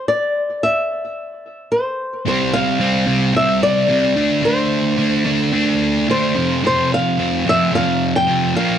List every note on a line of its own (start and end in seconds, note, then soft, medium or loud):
0.08 0.58 D5 medium
0.63 1.95 E5 medium
1.72 2.27 C5 medium
2.25 2.79 C3 medium
2.25 2.79 G3 medium
2.25 2.81 C4 medium
2.25 2.55 C5 medium
2.54 3.36 F5 medium
2.80 3.05 C3 medium
2.80 3.06 G3 medium
2.80 3.07 C4 medium
3.07 3.32 C3 medium
3.07 3.33 G3 medium
3.07 3.35 C4 medium
3.33 3.87 C3 medium
3.33 3.88 G3 medium
3.33 3.90 C4 medium
3.33 3.63 E5 medium
3.63 4.41 D5 medium
3.88 4.15 C3 medium
3.88 4.15 G3 medium
3.88 4.16 C4 medium
4.16 4.42 D3 medium
4.16 4.43 A3 medium
4.16 4.43 D4 loud
4.43 4.97 D3 medium
4.43 4.98 A3 medium
4.43 4.98 D4 medium
4.43 5.57 C5 medium
4.98 5.24 D3 medium
4.98 5.25 A3 medium
4.98 5.25 D4 medium
5.25 5.52 D3 medium
5.25 5.52 A3 medium
5.25 5.52 D4 medium
5.53 6.07 D3 medium
5.53 6.08 A3 medium
5.53 6.08 D4 loud
5.57 6.10 A#4 medium
6.08 6.35 D3 medium
6.08 6.35 A3 medium
6.08 6.35 D4 medium
6.08 6.61 C5 medium
6.36 6.63 F2 medium
6.36 6.64 C3 medium
6.36 6.65 F3 loud
6.64 7.17 F2 medium
6.64 7.17 C3 medium
6.64 7.19 F3 medium
6.64 6.94 C5 medium
6.94 7.49 F5 medium
7.18 7.44 F2 medium
7.18 7.45 C3 medium
7.18 7.46 F3 medium
7.45 7.71 F2 medium
7.45 7.72 C3 medium
7.45 7.73 F3 medium
7.49 7.74 E5 loud
7.72 8.26 F2 medium
7.72 8.27 C3 medium
7.72 8.28 F3 medium
7.72 8.16 F5 medium
8.16 8.56 G5 loud
8.27 8.54 F2 medium
8.27 8.54 C3 medium
8.27 8.56 F3 medium
8.55 8.78 A#2 medium
8.55 8.78 F3 medium
8.55 8.78 A#3 loud
8.55 8.78 F5 medium